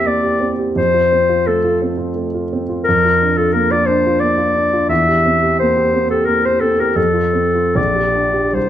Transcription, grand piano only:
0, 0, Header, 1, 2, 480
1, 0, Start_track
1, 0, Key_signature, -1, "major"
1, 0, Tempo, 696864
1, 530, Time_signature, 3, 2, 24, 8
1, 1967, Tempo, 684932
1, 4847, Tempo, 795756
1, 5890, End_track
2, 0, Start_track
2, 0, Title_t, "Grand piano"
2, 0, Program_c, 0, 0
2, 0, Control_c, 0, 64, 127
2, 0, Note_on_c, 0, 40, 53
2, 0, Note_on_c, 0, 58, 44
2, 0, Note_on_c, 0, 60, 37
2, 0, Note_on_c, 0, 67, 47
2, 33, Note_off_c, 0, 58, 0
2, 33, Note_on_c, 0, 58, 36
2, 115, Note_off_c, 0, 67, 0
2, 158, Note_on_c, 0, 67, 43
2, 233, Note_off_c, 0, 58, 0
2, 277, Note_off_c, 0, 60, 0
2, 277, Note_on_c, 0, 60, 42
2, 356, Note_off_c, 0, 67, 0
2, 402, Note_on_c, 0, 67, 45
2, 476, Note_off_c, 0, 60, 0
2, 493, Note_off_c, 0, 40, 0
2, 521, Note_on_c, 0, 41, 52
2, 527, Note_off_c, 0, 67, 0
2, 542, Control_c, 0, 64, 0
2, 646, Note_on_c, 0, 65, 40
2, 667, Control_c, 0, 64, 127
2, 772, Note_on_c, 0, 60, 33
2, 842, Note_off_c, 0, 65, 0
2, 890, Note_on_c, 0, 65, 46
2, 964, Note_off_c, 0, 60, 0
2, 1012, Note_on_c, 0, 57, 48
2, 1083, Note_off_c, 0, 65, 0
2, 1131, Note_on_c, 0, 65, 47
2, 1203, Note_off_c, 0, 57, 0
2, 1252, Note_on_c, 0, 60, 44
2, 1323, Note_off_c, 0, 65, 0
2, 1361, Note_on_c, 0, 65, 46
2, 1443, Note_off_c, 0, 60, 0
2, 1484, Note_on_c, 0, 57, 41
2, 1556, Note_off_c, 0, 65, 0
2, 1615, Note_on_c, 0, 65, 39
2, 1678, Note_off_c, 0, 57, 0
2, 1741, Note_on_c, 0, 60, 45
2, 1803, Note_off_c, 0, 65, 0
2, 1854, Note_on_c, 0, 65, 46
2, 1926, Note_off_c, 0, 60, 0
2, 1935, Note_off_c, 0, 41, 0
2, 1970, Note_off_c, 0, 65, 0
2, 1977, Control_c, 0, 64, 0
2, 1988, Note_on_c, 0, 41, 59
2, 2101, Note_on_c, 0, 65, 46
2, 2108, Control_c, 0, 64, 127
2, 2220, Note_on_c, 0, 62, 39
2, 2286, Note_off_c, 0, 65, 0
2, 2332, Note_on_c, 0, 65, 43
2, 2404, Note_off_c, 0, 62, 0
2, 2448, Note_on_c, 0, 58, 52
2, 2518, Note_off_c, 0, 65, 0
2, 2574, Note_on_c, 0, 65, 46
2, 2634, Note_off_c, 0, 58, 0
2, 2690, Note_on_c, 0, 62, 43
2, 2755, Note_off_c, 0, 65, 0
2, 2813, Note_on_c, 0, 65, 48
2, 2872, Note_off_c, 0, 62, 0
2, 2925, Note_on_c, 0, 58, 40
2, 2994, Note_off_c, 0, 65, 0
2, 3033, Note_on_c, 0, 65, 46
2, 3112, Note_off_c, 0, 58, 0
2, 3158, Note_on_c, 0, 62, 45
2, 3227, Note_off_c, 0, 65, 0
2, 3281, Note_on_c, 0, 65, 49
2, 3351, Note_off_c, 0, 62, 0
2, 3381, Note_off_c, 0, 41, 0
2, 3393, Note_on_c, 0, 40, 56
2, 3401, Note_off_c, 0, 65, 0
2, 3411, Control_c, 0, 64, 0
2, 3525, Control_c, 0, 64, 127
2, 3525, Note_on_c, 0, 67, 44
2, 3648, Note_on_c, 0, 60, 37
2, 3716, Note_off_c, 0, 67, 0
2, 3766, Note_on_c, 0, 67, 42
2, 3837, Note_off_c, 0, 60, 0
2, 3895, Note_on_c, 0, 58, 48
2, 3955, Note_off_c, 0, 67, 0
2, 4007, Note_on_c, 0, 67, 44
2, 4080, Note_off_c, 0, 58, 0
2, 4128, Note_on_c, 0, 60, 40
2, 4195, Note_off_c, 0, 67, 0
2, 4249, Note_on_c, 0, 67, 47
2, 4316, Note_off_c, 0, 60, 0
2, 4364, Note_on_c, 0, 58, 38
2, 4436, Note_off_c, 0, 67, 0
2, 4477, Note_on_c, 0, 67, 42
2, 4554, Note_off_c, 0, 58, 0
2, 4600, Note_on_c, 0, 60, 39
2, 4672, Note_off_c, 0, 67, 0
2, 4725, Note_on_c, 0, 67, 46
2, 4798, Note_off_c, 0, 60, 0
2, 4817, Note_off_c, 0, 40, 0
2, 4842, Note_on_c, 0, 41, 51
2, 4849, Note_off_c, 0, 67, 0
2, 4860, Control_c, 0, 64, 0
2, 4950, Note_on_c, 0, 65, 40
2, 4977, Control_c, 0, 64, 127
2, 5069, Note_on_c, 0, 60, 34
2, 5153, Note_off_c, 0, 65, 0
2, 5198, Note_on_c, 0, 65, 41
2, 5276, Note_off_c, 0, 60, 0
2, 5315, Note_off_c, 0, 41, 0
2, 5320, Note_on_c, 0, 34, 56
2, 5327, Note_off_c, 0, 65, 0
2, 5346, Control_c, 0, 64, 0
2, 5441, Note_on_c, 0, 67, 41
2, 5457, Control_c, 0, 64, 127
2, 5564, Note_on_c, 0, 62, 39
2, 5635, Note_off_c, 0, 67, 0
2, 5673, Note_on_c, 0, 67, 44
2, 5756, Note_off_c, 0, 62, 0
2, 5787, Note_off_c, 0, 34, 0
2, 5790, Note_on_c, 0, 36, 44
2, 5800, Note_off_c, 0, 67, 0
2, 5821, Control_c, 0, 64, 0
2, 5890, Note_off_c, 0, 36, 0
2, 5890, End_track
0, 0, End_of_file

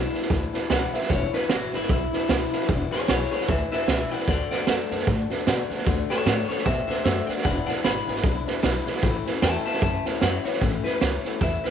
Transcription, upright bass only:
0, 0, Header, 1, 3, 480
1, 0, Start_track
1, 0, Key_signature, 3, "major"
1, 0, Tempo, 396563
1, 1330, Time_signature, 4, 2, 24, 8
1, 14167, End_track
2, 0, Start_track
2, 0, Title_t, "Upright bass"
2, 0, Program_c, 0, 32
2, 364, Note_on_c, 0, 38, 97
2, 547, Note_off_c, 0, 38, 0
2, 849, Note_on_c, 0, 37, 101
2, 1031, Note_off_c, 0, 37, 0
2, 1333, Note_on_c, 0, 28, 101
2, 1514, Note_off_c, 0, 28, 0
2, 1816, Note_on_c, 0, 32, 93
2, 1996, Note_off_c, 0, 32, 0
2, 2095, Note_on_c, 0, 32, 88
2, 2224, Note_off_c, 0, 32, 0
2, 2292, Note_on_c, 0, 35, 92
2, 2474, Note_off_c, 0, 35, 0
2, 2775, Note_on_c, 0, 37, 94
2, 2956, Note_off_c, 0, 37, 0
2, 3255, Note_on_c, 0, 28, 105
2, 3437, Note_off_c, 0, 28, 0
2, 3737, Note_on_c, 0, 35, 91
2, 3918, Note_off_c, 0, 35, 0
2, 4215, Note_on_c, 0, 38, 102
2, 4397, Note_off_c, 0, 38, 0
2, 4696, Note_on_c, 0, 37, 99
2, 4878, Note_off_c, 0, 37, 0
2, 5176, Note_on_c, 0, 38, 100
2, 5359, Note_off_c, 0, 38, 0
2, 5662, Note_on_c, 0, 42, 89
2, 5842, Note_off_c, 0, 42, 0
2, 5944, Note_on_c, 0, 42, 90
2, 6072, Note_off_c, 0, 42, 0
2, 6141, Note_on_c, 0, 45, 101
2, 6322, Note_off_c, 0, 45, 0
2, 6623, Note_on_c, 0, 47, 85
2, 6803, Note_off_c, 0, 47, 0
2, 7102, Note_on_c, 0, 38, 108
2, 7282, Note_off_c, 0, 38, 0
2, 7576, Note_on_c, 0, 45, 87
2, 7758, Note_off_c, 0, 45, 0
2, 8058, Note_on_c, 0, 47, 98
2, 8240, Note_off_c, 0, 47, 0
2, 8536, Note_on_c, 0, 42, 90
2, 8718, Note_off_c, 0, 42, 0
2, 9017, Note_on_c, 0, 28, 101
2, 9199, Note_off_c, 0, 28, 0
2, 9496, Note_on_c, 0, 32, 98
2, 9678, Note_off_c, 0, 32, 0
2, 9777, Note_on_c, 0, 32, 87
2, 9906, Note_off_c, 0, 32, 0
2, 9968, Note_on_c, 0, 35, 91
2, 10152, Note_off_c, 0, 35, 0
2, 10451, Note_on_c, 0, 35, 94
2, 10633, Note_off_c, 0, 35, 0
2, 10929, Note_on_c, 0, 33, 97
2, 11111, Note_off_c, 0, 33, 0
2, 11405, Note_on_c, 0, 40, 87
2, 11589, Note_off_c, 0, 40, 0
2, 11887, Note_on_c, 0, 42, 94
2, 12070, Note_off_c, 0, 42, 0
2, 12370, Note_on_c, 0, 42, 99
2, 12551, Note_off_c, 0, 42, 0
2, 12847, Note_on_c, 0, 33, 101
2, 13044, Note_off_c, 0, 33, 0
2, 13334, Note_on_c, 0, 37, 86
2, 13529, Note_off_c, 0, 37, 0
2, 13811, Note_on_c, 0, 40, 85
2, 14006, Note_off_c, 0, 40, 0
2, 14167, End_track
3, 0, Start_track
3, 0, Title_t, "Muted upright bass strokes"
3, 656, Note_on_c, 9, 29, 77
3, 777, Note_off_c, 9, 29, 0
3, 1129, Note_on_c, 9, 29, 78
3, 1250, Note_off_c, 9, 29, 0
3, 1609, Note_on_c, 9, 29, 81
3, 1730, Note_off_c, 9, 29, 0
3, 3538, Note_on_c, 9, 29, 77
3, 3659, Note_off_c, 9, 29, 0
3, 4497, Note_on_c, 9, 29, 67
3, 4619, Note_off_c, 9, 29, 0
3, 4978, Note_on_c, 9, 29, 77
3, 5099, Note_off_c, 9, 29, 0
3, 5458, Note_on_c, 9, 29, 75
3, 5579, Note_off_c, 9, 29, 0
3, 6424, Note_on_c, 9, 29, 72
3, 6545, Note_off_c, 9, 29, 0
3, 6901, Note_on_c, 9, 29, 75
3, 7022, Note_off_c, 9, 29, 0
3, 7383, Note_on_c, 9, 29, 77
3, 7504, Note_off_c, 9, 29, 0
3, 7858, Note_on_c, 9, 29, 74
3, 7979, Note_off_c, 9, 29, 0
3, 8338, Note_on_c, 9, 29, 71
3, 8459, Note_off_c, 9, 29, 0
3, 8817, Note_on_c, 9, 29, 68
3, 8938, Note_off_c, 9, 29, 0
3, 9293, Note_on_c, 9, 29, 77
3, 9414, Note_off_c, 9, 29, 0
3, 10251, Note_on_c, 9, 29, 76
3, 10372, Note_off_c, 9, 29, 0
3, 10732, Note_on_c, 9, 29, 72
3, 10853, Note_off_c, 9, 29, 0
3, 11205, Note_on_c, 9, 29, 68
3, 11326, Note_off_c, 9, 29, 0
3, 11685, Note_on_c, 9, 29, 72
3, 11806, Note_off_c, 9, 29, 0
3, 12172, Note_on_c, 9, 29, 76
3, 12293, Note_off_c, 9, 29, 0
3, 12653, Note_on_c, 9, 29, 74
3, 12774, Note_off_c, 9, 29, 0
3, 14097, Note_on_c, 9, 29, 64
3, 14167, Note_off_c, 9, 29, 0
3, 14167, End_track
0, 0, End_of_file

